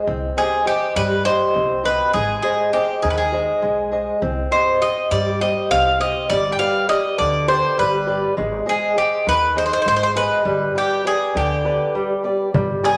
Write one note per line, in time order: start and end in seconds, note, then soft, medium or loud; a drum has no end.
0.07 0.28 C2 medium
0.07 0.65 C4 medium
0.37 0.64 G4 soft
0.37 0.67 G#4 medium
0.37 0.65 C5 soft
0.37 0.65 D#5 soft
0.66 1.13 G4 soft
0.66 0.96 G4 medium
0.66 1.14 C5 soft
0.66 1.14 D#5 soft
0.96 1.38 G2 medium
0.96 1.53 G3 medium
0.96 1.25 B4 medium
1.25 1.73 G4 soft
1.25 1.81 C5 medium
1.25 1.73 C5 soft
1.25 1.73 D#5 medium
1.54 1.97 C2 medium
1.54 2.12 C4 medium
1.84 2.08 G4 soft
1.84 2.13 B4 medium
1.84 2.08 C5 soft
1.84 2.08 D#5 soft
2.13 2.35 G#1 loud
2.13 2.72 G#3 medium
2.13 2.41 G#4 medium
2.42 2.71 G#4 medium
2.42 2.72 G#4 soft
2.42 2.72 C5 soft
2.42 2.72 D#5 soft
2.73 3.02 G4 medium
2.73 3.21 G#4 soft
2.73 3.21 C5 soft
2.73 3.21 D#5 medium
3.02 3.45 D#2 medium
3.02 3.61 D#3 medium
3.02 3.10 G#4 medium
3.10 3.17 B4 medium
3.18 3.88 G#4 medium
3.32 3.80 G#4 soft
3.32 3.80 C5 soft
3.32 3.81 D#5 soft
3.62 4.05 B1 medium
3.62 4.20 G#3 medium
3.92 4.16 G#4 soft
3.92 4.16 C5 soft
3.92 4.16 D#5 soft
4.22 4.43 C2 medium
4.22 4.80 C4 medium
4.51 4.80 G4 soft
4.51 4.81 C5 soft
4.51 4.80 C5 medium
4.51 4.81 D#5 soft
4.81 5.29 G4 soft
4.81 5.29 C5 soft
4.81 5.09 D#5 medium
4.81 5.29 D#5 soft
5.11 5.53 G2 medium
5.11 5.69 G3 medium
5.11 5.41 D5 medium
5.40 5.88 G4 soft
5.40 5.88 C5 soft
5.40 5.69 D#5 medium
5.40 5.89 D#5 medium
5.71 6.12 C2 medium
5.71 6.28 C4 medium
5.71 6.00 F5 loud
6.00 6.24 G4 soft
6.00 6.24 C5 soft
6.00 6.24 D#5 soft
6.00 6.28 D#5 medium
6.30 6.51 G1 medium
6.30 6.87 G3 medium
6.30 6.51 D5 medium
6.52 6.59 G5 medium
6.59 6.88 G4 soft
6.59 6.88 B4 soft
6.59 6.88 D5 soft
6.59 6.89 F5 medium
6.89 7.37 G4 soft
6.89 7.37 B4 soft
6.89 7.37 D5 soft
6.89 7.17 D#5 medium
7.18 7.61 D2 medium
7.18 7.76 D3 medium
7.18 7.46 D5 medium
7.48 7.96 G4 soft
7.48 7.96 B4 soft
7.48 7.76 C5 medium
7.48 7.97 D5 medium
7.78 8.20 G1 medium
7.78 8.36 G3 medium
7.78 8.34 B4 medium
8.07 8.31 G4 soft
8.07 8.32 B4 soft
8.07 8.32 D5 soft
8.37 8.59 G#1 medium
8.37 8.95 G#3 medium
8.66 8.95 G#4 soft
8.66 8.96 G#4 medium
8.66 8.95 C5 soft
8.66 8.96 D#5 soft
8.96 9.25 G4 medium
8.96 9.44 G#4 soft
8.96 9.44 C5 soft
8.96 9.45 D#5 soft
9.27 9.69 D#2 medium
9.27 9.85 D#3 medium
9.27 9.56 B4 loud
9.55 10.04 G#4 soft
9.55 10.04 C5 soft
9.55 9.65 C5 medium
9.55 10.04 D#5 medium
9.66 9.72 C5 medium
9.73 9.80 C5 medium
9.82 10.44 G#3 medium
9.82 9.87 C5 medium
9.86 10.28 G#1 medium
9.86 9.95 C5 medium
9.96 10.02 C5 medium
10.03 10.10 C5 medium
10.16 10.40 G#4 soft
10.16 10.72 B4 medium
10.16 10.40 C5 soft
10.16 10.40 D#5 soft
10.45 10.66 G1 medium
10.45 11.03 G3 medium
10.75 11.04 G4 soft
10.75 11.07 G4 medium
10.75 11.04 B4 soft
10.75 11.04 D5 soft
11.05 11.53 G4 soft
11.05 11.34 G#4 medium
11.05 11.53 B4 soft
11.05 11.53 D5 soft
11.35 11.77 D2 medium
11.35 11.93 D3 medium
11.35 12.21 G4 medium
11.65 12.12 G4 soft
11.65 12.13 B4 soft
11.65 12.13 D5 soft
11.95 12.53 G3 medium
12.24 12.48 G4 soft
12.24 12.48 B4 soft
12.24 12.48 D5 soft
12.54 12.75 G1 loud
12.54 12.97 G3 medium
12.54 darbuka dum medium
12.83 12.97 G4 soft
12.83 12.97 G#4 medium
12.83 12.97 B4 soft
12.83 12.97 D5 soft
12.83 darbuka tek medium